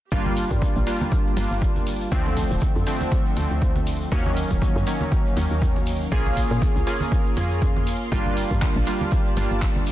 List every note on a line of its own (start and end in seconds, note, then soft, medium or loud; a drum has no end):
0.12 0.45 G1 loud
0.12 0.84 G3 medium
0.12 0.84 A#3 medium
0.12 0.84 D4 medium
0.12 0.84 F4 medium
0.12 kick loud
0.12 shaker soft
0.26 high conga medium
0.26 shaker soft
0.37 open hi-hat loud
0.37 shaker medium
0.51 0.59 G2 medium
0.51 kick medium
0.51 shaker soft
0.62 kick loud
0.62 high conga medium
0.62 shaker medium
0.70 2.93 D5 medium
0.76 0.84 A#1 medium
0.76 shaker soft
0.87 1.34 G3 medium
0.87 1.34 A#3 medium
0.87 1.34 D4 medium
0.87 1.34 F4 medium
0.87 open hi-hat loud
0.87 shaker medium
1.00 2.93 A5 medium
1.00 high conga medium
1.00 shaker soft
1.12 kick loud
1.12 shaker soft
1.27 shaker soft
1.36 1.47 G1 loud
1.36 2.09 G3 medium
1.36 2.09 A#3 medium
1.36 2.09 D4 medium
1.36 2.09 F4 medium
1.36 open hi-hat loud
1.36 high conga medium
1.36 shaker medium
1.51 2.07 G1 medium
1.51 shaker soft
1.61 kick loud
1.61 shaker medium
1.76 high conga medium
1.76 shaker soft
1.87 open hi-hat loud
1.87 shaker medium
2.01 shaker soft
2.12 2.45 D2 loud
2.12 2.84 D3 medium
2.12 2.84 F3 medium
2.12 2.84 A3 medium
2.12 2.84 C4 medium
2.12 kick loud
2.12 shaker medium
2.26 high conga loud
2.26 shaker soft
2.37 kick medium
2.37 open hi-hat loud
2.37 shaker medium
2.43 4.12 A4 medium
2.43 4.12 E5 medium
2.50 2.59 D1 loud
2.50 shaker soft
2.61 kick loud
2.61 high conga medium
2.61 shaker medium
2.76 2.84 F2 medium
2.76 shaker soft
2.87 3.34 D3 medium
2.87 3.34 F3 medium
2.87 3.34 A3 medium
2.87 3.34 C4 medium
2.87 open hi-hat loud
2.87 shaker medium
3.01 high conga medium
3.01 shaker soft
3.11 kick loud
3.11 shaker soft
3.26 shaker soft
3.37 3.47 D2 loud
3.37 4.09 D3 medium
3.37 4.09 F3 medium
3.37 4.09 A3 medium
3.37 4.09 C4 medium
3.37 open hi-hat loud
3.37 high conga medium
3.37 shaker medium
3.51 4.07 D2 medium
3.51 shaker soft
3.62 kick loud
3.62 shaker soft
3.75 high conga medium
3.75 shaker soft
3.87 open hi-hat loud
3.87 shaker loud
4.01 shaker soft
4.12 4.45 D#2 loud
4.12 4.84 D#3 medium
4.12 4.84 F#3 medium
4.12 4.84 A#3 medium
4.12 4.84 C#4 loud
4.12 kick loud
4.12 shaker medium
4.26 high conga loud
4.26 shaker soft
4.37 open hi-hat loud
4.37 shaker medium
4.50 4.59 D#1 medium
4.50 kick medium
4.50 shaker soft
4.62 kick loud
4.62 high conga medium
4.62 shaker medium
4.75 4.84 F#2 medium
4.75 8.92 A#4 medium
4.75 shaker soft
4.87 5.34 D#3 medium
4.87 5.34 F#3 medium
4.87 5.34 A#3 medium
4.87 5.34 C#4 medium
4.87 open hi-hat loud
4.87 shaker medium
5.01 8.93 F5 medium
5.01 high conga medium
5.01 shaker soft
5.12 kick loud
5.12 shaker soft
5.26 shaker soft
5.36 5.47 D#2 medium
5.36 6.09 D#3 medium
5.36 6.09 F#3 medium
5.36 6.09 A#3 medium
5.36 6.09 C#4 medium
5.36 open hi-hat loud
5.36 high conga medium
5.36 shaker loud
5.51 6.07 D#2 medium
5.51 shaker soft
5.62 kick loud
5.62 shaker soft
5.76 high conga medium
5.76 shaker soft
5.87 open hi-hat loud
5.87 shaker medium
6.02 shaker soft
6.11 6.45 A#1 loud
6.11 6.84 A#3 medium
6.11 6.84 C#4 medium
6.11 6.84 F4 medium
6.11 6.84 G#4 medium
6.11 kick loud
6.11 shaker medium
6.26 high conga medium
6.26 shaker soft
6.37 kick medium
6.37 open hi-hat loud
6.37 shaker medium
6.51 6.59 A#2 medium
6.51 shaker soft
6.62 kick loud
6.62 high conga medium
6.62 shaker soft
6.76 6.84 C#2 medium
6.76 shaker soft
6.87 7.34 A#3 medium
6.87 7.34 C#4 medium
6.87 7.34 F4 medium
6.87 7.34 G#4 medium
6.87 open hi-hat loud
6.87 shaker medium
7.00 8.93 C6 medium
7.00 high conga medium
7.00 shaker soft
7.11 kick loud
7.11 shaker soft
7.26 shaker soft
7.37 7.95 F2 medium
7.37 8.09 A#3 medium
7.37 8.09 C#4 medium
7.37 8.09 F4 medium
7.37 8.09 G#4 medium
7.37 open hi-hat loud
7.37 high conga medium
7.37 shaker medium
7.51 shaker soft
7.62 kick loud
7.62 shaker medium
7.76 high conga medium
7.76 shaker soft
7.87 open hi-hat loud
7.87 shaker medium
8.01 shaker soft
8.12 8.45 G1 loud
8.12 8.84 G3 medium
8.12 8.84 A#3 medium
8.12 8.84 D4 medium
8.12 8.84 F4 loud
8.12 kick loud
8.12 shaker medium
8.26 high conga medium
8.26 shaker soft
8.36 9.92 D5 medium
8.36 open hi-hat loud
8.36 shaker medium
8.51 8.59 G2 medium
8.51 kick medium
8.51 shaker soft
8.62 kick loud
8.62 clap loud
8.62 high conga medium
8.62 shaker soft
8.76 8.84 A#1 loud
8.76 shaker soft
8.87 9.34 G3 medium
8.87 9.34 A#3 medium
8.87 9.34 D4 medium
8.87 9.34 F4 medium
8.87 open hi-hat loud
8.87 shaker medium
9.01 9.92 A5 medium
9.01 high conga medium
9.01 shaker soft
9.11 kick loud
9.11 shaker medium
9.26 shaker soft
9.37 9.47 G1 loud
9.37 9.92 G3 medium
9.37 9.92 A#3 medium
9.37 9.92 D4 medium
9.37 9.92 F4 medium
9.37 open hi-hat loud
9.37 high conga medium
9.37 shaker medium
9.50 9.92 G1 medium
9.50 shaker soft
9.62 kick loud
9.62 clap loud
9.62 shaker medium
9.76 high conga medium
9.76 shaker soft
9.86 open hi-hat loud
9.86 shaker medium